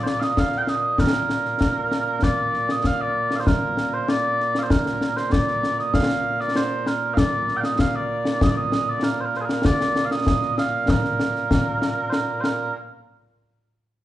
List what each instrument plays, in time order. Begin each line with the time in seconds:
Already playing: bagpipes A#2 A#3
0.04 bagpipes C5, snare
0.08 bagpipes D5
0.20 bagpipes D#5 F5, snare
0.37 bagpipes F5, concert bass drum, snare
0.52 snare
0.58 bagpipes G5
0.62 bagpipes F5
0.67 bagpipes D#5, snare
0.98 bagpipes A#4, concert bass drum, snare
1.14 snare
1.29 snare
1.45 snare
1.61 concert bass drum, snare
1.91 snare
2.22 bagpipes D5, concert bass drum, snare
2.53 snare
2.69 bagpipes D#5, snare
2.84 bagpipes F5, concert bass drum, snare
3.01 bagpipes D5
3.31 snare
3.36 bagpipes F5
3.40 bagpipes C5
3.47 bagpipes A#4, concert bass drum, snare
3.77 snare
3.93 bagpipes C5
4.08 bagpipes D5, snare
4.40 snare
4.55 bagpipes F5, snare
4.63 bagpipes C5
4.70 bagpipes A#4, concert bass drum, snare
4.86 snare
5.01 snare
5.17 bagpipes C5, snare
5.32 bagpipes D5, concert bass drum, snare
5.48 snare
5.63 snare
5.79 bagpipes D#5, snare
5.94 bagpipes F5, concert bass drum, snare
6.10 snare
6.40 bagpipes D5, snare
6.56 bagpipes C5, snare
6.86 bagpipes A#4, snare
7.14 bagpipes D5 F5, concert bass drum, snare
7.48 snare
7.57 bagpipes F5 G5
7.63 bagpipes D#5, snare
7.79 bagpipes F5, concert bass drum, snare
7.95 bagpipes D5
8.25 snare
8.41 bagpipes D#5, concert bass drum, snare
8.48 bagpipes D5
8.56 bagpipes D#5
8.72 snare
8.89 bagpipes D5
9.03 bagpipes A#4, snare
9.20 bagpipes C5
9.25 bagpipes A#4
9.34 bagpipes C5, snare
9.41 bagpipes G#4
9.45 bagpipes A#4, snare
9.65 bagpipes D5, concert bass drum, snare
9.81 snare
9.96 snare
10.05 bagpipes F5
10.11 bagpipes D#5, snare
10.27 concert bass drum, snare
10.42 snare
10.58 bagpipes F5, snare
10.88 bagpipes A#4, concert bass drum, snare
11.04 snare
11.20 snare
11.35 snare
11.51 concert bass drum, snare
11.82 snare
12.10 bagpipes A#4 C5, snare
12.40 bagpipes A#4 C5, snare